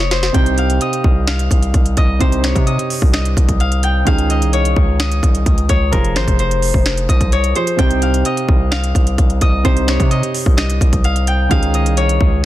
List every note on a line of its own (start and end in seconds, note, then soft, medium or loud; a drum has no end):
0.00 0.31 F1 loud
0.00 0.60 A#4 medium
0.00 0.18 C#5 medium
0.00 0.81 D#5 medium
0.00 snare medium
0.00 closed hi-hat medium
0.11 2.10 C5 medium
0.11 snare loud
0.11 closed hi-hat medium
0.23 snare medium
0.23 closed hi-hat medium
0.33 0.79 C2 loud
0.33 2.16 C3 medium
0.33 2.16 C4 medium
0.33 2.17 D#4 medium
0.33 2.17 G4 medium
0.33 1.90 G5 loud
0.33 kick loud
0.33 closed hi-hat medium
0.46 closed hi-hat medium
0.58 1.27 F5 medium
0.58 closed hi-hat medium
0.70 closed hi-hat medium
0.81 1.97 D#5 medium
0.81 closed hi-hat medium
0.93 closed hi-hat medium
1.04 1.49 C2 loud
1.04 kick medium
1.27 2.94 F5 medium
1.27 finger snap loud
1.27 snare loud
1.27 closed hi-hat medium
1.39 closed hi-hat medium
1.51 1.73 C2 loud
1.51 kick medium
1.51 closed hi-hat medium
1.63 closed hi-hat medium
1.74 1.96 C2 loud
1.74 kick loud
1.74 closed hi-hat medium
1.86 closed hi-hat medium
1.97 2.20 C2 loud
1.97 2.66 D#5 medium
1.97 kick medium
1.97 closed hi-hat medium
2.19 2.54 C2 loud
2.19 4.02 C3 medium
2.19 4.03 C4 medium
2.19 4.03 D#4 medium
2.19 4.04 G4 medium
2.19 2.50 C5 medium
2.19 kick loud
2.19 closed hi-hat medium
2.32 closed hi-hat medium
2.44 4.36 C#5 medium
2.44 finger snap medium
2.44 snare loud
2.44 closed hi-hat medium
2.56 2.78 C3 loud
2.56 kick loud
2.56 closed hi-hat medium
2.67 3.13 D#5 medium
2.67 closed hi-hat medium
2.79 closed hi-hat medium
2.90 open hi-hat medium
3.02 3.36 C2 loud
3.02 kick loud
3.13 4.30 D#5 medium
3.13 finger snap medium
3.13 snare loud
3.13 closed hi-hat medium
3.25 closed hi-hat medium
3.37 4.04 C2 loud
3.37 kick medium
3.37 closed hi-hat medium
3.49 kick medium
3.49 closed hi-hat medium
3.60 4.06 F5 medium
3.60 closed hi-hat medium
3.72 closed hi-hat medium
3.83 5.39 G5 medium
3.83 closed hi-hat medium
4.05 4.43 C#2 loud
4.05 5.88 D#3 medium
4.05 5.89 C#4 medium
4.05 5.89 D#4 medium
4.05 5.90 G#4 medium
4.05 5.73 F5 loud
4.05 kick loud
4.05 closed hi-hat medium
4.18 closed hi-hat medium
4.30 5.00 D#5 medium
4.30 closed hi-hat medium
4.42 4.75 C2 loud
4.42 closed hi-hat medium
4.53 5.69 C#5 medium
4.53 closed hi-hat medium
4.65 closed hi-hat medium
4.76 5.21 C#2 loud
4.76 kick medium
5.00 6.78 D#5 medium
5.00 finger snap loud
5.00 snare loud
5.00 closed hi-hat medium
5.12 closed hi-hat medium
5.23 5.45 C2 loud
5.23 kick medium
5.23 closed hi-hat medium
5.35 closed hi-hat medium
5.46 5.69 C#2 loud
5.46 kick loud
5.46 closed hi-hat medium
5.58 closed hi-hat medium
5.69 5.92 C#2 loud
5.69 6.22 C#5 medium
5.69 kick medium
5.69 closed hi-hat medium
5.91 6.17 F1 loud
5.91 7.51 F3 medium
5.91 7.52 F4 medium
5.91 7.52 G#4 medium
5.91 8.04 A#4 medium
5.91 7.53 C5 medium
5.91 kick loud
5.91 closed hi-hat medium
6.05 closed hi-hat medium
6.16 6.27 G#1 loud
6.16 6.39 C5 medium
6.16 finger snap medium
6.16 snare loud
6.16 closed hi-hat medium
6.28 6.72 F1 loud
6.28 kick loud
6.28 closed hi-hat medium
6.39 7.39 C5 medium
6.39 closed hi-hat medium
6.51 closed hi-hat medium
6.62 open hi-hat medium
6.74 7.08 F1 loud
6.74 kick loud
6.86 finger snap medium
6.86 snare loud
6.86 closed hi-hat medium
6.97 closed hi-hat medium
7.09 7.54 C2 loud
7.09 8.25 D#5 medium
7.09 kick medium
7.09 closed hi-hat medium
7.21 kick medium
7.21 closed hi-hat medium
7.32 7.62 C#5 medium
7.32 closed hi-hat medium
7.44 closed hi-hat medium
7.55 7.78 F3 soft
7.55 7.79 F4 soft
7.55 7.79 G#4 soft
7.55 9.54 C5 medium
7.55 7.79 C5 medium
7.55 closed hi-hat medium
7.67 closed hi-hat medium
7.77 8.23 C2 loud
7.77 9.60 C3 medium
7.77 9.61 C4 medium
7.77 9.61 D#4 medium
7.77 9.62 G4 medium
7.77 9.34 G5 loud
7.77 kick loud
7.77 closed hi-hat medium
7.91 closed hi-hat medium
8.02 8.71 F5 medium
8.02 closed hi-hat medium
8.14 closed hi-hat medium
8.25 9.41 D#5 medium
8.25 closed hi-hat medium
8.37 closed hi-hat medium
8.49 8.93 C2 loud
8.49 kick loud
8.71 10.38 F5 medium
8.71 finger snap medium
8.71 snare loud
8.71 closed hi-hat medium
8.84 closed hi-hat medium
8.95 9.17 C2 loud
8.95 kick medium
8.95 closed hi-hat medium
9.07 closed hi-hat medium
9.18 9.41 C2 loud
9.18 kick loud
9.18 closed hi-hat medium
9.30 closed hi-hat soft
9.41 9.64 C2 loud
9.41 10.10 D#5 medium
9.41 kick medium
9.41 closed hi-hat medium
9.63 9.98 C2 loud
9.63 11.46 C3 medium
9.63 11.47 C4 medium
9.63 11.47 D#4 medium
9.63 11.48 G4 medium
9.63 9.95 C5 loud
9.63 kick loud
9.63 closed hi-hat medium
9.77 closed hi-hat medium
9.88 11.80 C#5 medium
9.88 finger snap medium
9.88 snare loud
9.88 closed hi-hat medium
10.00 10.22 C3 loud
10.00 kick medium
10.00 closed hi-hat medium
10.11 10.57 D#5 medium
10.11 closed hi-hat medium
10.23 closed hi-hat medium
10.35 open hi-hat medium
10.46 10.80 C2 loud
10.46 kick loud
10.57 11.74 D#5 medium
10.57 finger snap loud
10.57 snare loud
10.57 closed hi-hat medium
10.70 closed hi-hat medium
10.81 11.48 C2 loud
10.81 kick medium
10.81 closed hi-hat medium
10.93 kick medium
10.93 closed hi-hat medium
11.04 11.51 F5 medium
11.04 closed hi-hat medium
11.16 closed hi-hat medium
11.27 12.45 G5 medium
11.27 closed hi-hat medium
11.49 11.87 C#2 loud
11.49 12.45 D#3 medium
11.49 12.45 C#4 medium
11.49 12.45 D#4 medium
11.49 12.45 G#4 medium
11.49 12.45 F5 loud
11.49 kick loud
11.49 closed hi-hat medium
11.63 closed hi-hat medium
11.74 12.44 D#5 medium
11.74 closed hi-hat medium
11.86 12.19 C2 loud
11.86 closed hi-hat medium
11.97 12.45 C#5 medium
11.97 closed hi-hat medium
12.09 closed hi-hat medium
12.21 12.45 C#2 loud
12.21 kick medium